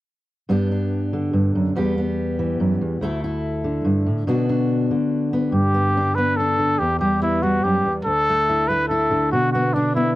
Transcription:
0.49 steel-string acoustic guitar G2 B3 D4 G4
0.72 steel-string acoustic guitar D4
1.13 steel-string acoustic guitar D3
1.33 steel-string acoustic guitar G2
1.55 steel-string acoustic guitar F#2
1.75 steel-string acoustic guitar E2 G3 B3 G4
1.98 steel-string acoustic guitar B3
2.39 steel-string acoustic guitar E3
2.60 steel-string acoustic guitar F#2
2.81 steel-string acoustic guitar E2
3.01 steel-string acoustic guitar D2 A3 E4 A4
3.24 steel-string acoustic guitar E4
3.64 steel-string acoustic guitar D3
3.85 steel-string acoustic guitar G2
4.06 steel-string acoustic guitar A2
4.27 steel-string acoustic guitar B2 B3 D4 F#4
4.49 steel-string acoustic guitar D4
4.91 steel-string acoustic guitar D3
5.33 steel-string acoustic guitar B3
5.52 steel-string acoustic guitar G2, trumpet G4
5.74 steel-string acoustic guitar B3
5.97 steel-string acoustic guitar D4
6.15 steel-string acoustic guitar B3, trumpet B4
6.37 steel-string acoustic guitar D4, trumpet A4
6.59 steel-string acoustic guitar D3
6.79 steel-string acoustic guitar E2, trumpet G4
7.00 steel-string acoustic guitar G3, trumpet G4
7.22 steel-string acoustic guitar B3, trumpet E4
7.42 steel-string acoustic guitar G3, trumpet F#4
7.64 steel-string acoustic guitar F#2, trumpet G4
7.85 steel-string acoustic guitar E2
8.05 steel-string acoustic guitar D2, trumpet A4
8.29 steel-string acoustic guitar A3
8.49 steel-string acoustic guitar E4
8.68 steel-string acoustic guitar A3, trumpet B4
8.89 steel-string acoustic guitar E4, trumpet A4
9.11 steel-string acoustic guitar D3
9.32 steel-string acoustic guitar B2, trumpet F#4
9.52 steel-string acoustic guitar B3, trumpet F#4
9.74 trumpet D4, steel-string acoustic guitar D4
9.95 steel-string acoustic guitar B3, trumpet E4

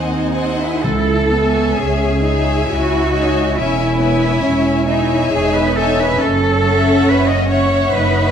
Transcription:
Already playing: double bass section D#2, cello section C4, viola section D#4, violin section C5 F#5 G#5
0.32 violin section C5 F#5 G#5
0.59 cello section E4
0.83 double bass section C#2, timpani C#3, viola section E4, cello section A4
1.31 viola section B3, violin section C#5 E5 G#5
1.78 double bass section C#2, viola section C#4, cello section G#4
2.22 viola section D#4, violin section C#5 E5 G#5
2.66 double bass section C#2, viola section E4, cello section F#4
3.11 viola section D#4, violin section C#5 E5 G#5
3.54 double bass section E1, viola section C#4, cello section E4, violin section C#5 G#5
3.58 violin section E5
3.98 viola section B3, violin section C#5 E5 G#5
4.42 double bass section E1, viola section C#4
4.86 cello section D#4, viola section E4, violin section C#5 E5 G#5
5.31 double bass section E1, viola section D#4, cello section G#4
5.54 cello section B4
5.76 cello section A4, violin section C#5 E5 G#5
5.99 cello section B4
6.19 double bass section F#1, viola section C#4, cello section A4
6.63 violin section C#5 E5 F#5
7.06 double bass section F#1, cello section B4
7.27 cello section D#5
7.48 cello section C#5, violin section C#5 E5 F#5
7.91 double bass section F#1, viola section D#4, cello section B4

